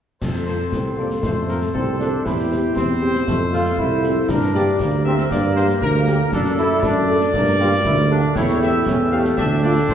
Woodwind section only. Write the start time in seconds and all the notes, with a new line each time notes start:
0.22 A4 C5
2.26 G4 C5
3.28 A4
4.30 G4 A#4
6.33 A4 D5
7.36 A#4
8.35 A4 G5